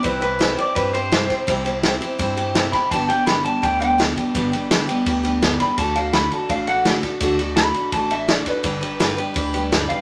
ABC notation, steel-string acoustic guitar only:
X:1
M:4/4
L:1/8
Q:1/4=168
K:G
V:1 name="Steel-string acoustic guitar"
[C,G,CEG] [CEG] [C,G,CEG] [CEG] [G,CEG] [CEG] [C,G,CEG] [CEG] | [C,G,CEG] [CEG] [C,G,CEG] [CEG] [G,CEG] [CEG] [C,G,CEG] [CEG] | [G,,D,G,B,DG] [G,B,DG] [G,,D,G,B,DG] [G,B,DG] [G,B,DG] [G,B,DG] [G,,D,G,B,DG] [G,B,DG] | [G,,D,G,B,DG] [G,B,DG] [G,,D,G,B,DG] [G,B,DG] [G,B,DG] [G,B,DG] [G,,D,G,B,DG] [G,B,DG] |
[D,A,DFA] [DFA] [D,A,DFA] [DFA] [A,DFA] [DFA] [D,A,DFA] [DFA] | [D,A,DFA] [DFA] [D,A,DFA] [DFA] [A,DFA] [DFA] [D,A,DFA] [DFA] | [G,,D,G,DGB] [G,DGB] [G,,D,G,DGB] [G,DGB] [G,DGB] [G,DGB] [G,,D,G,DGB] [G,DGB] |]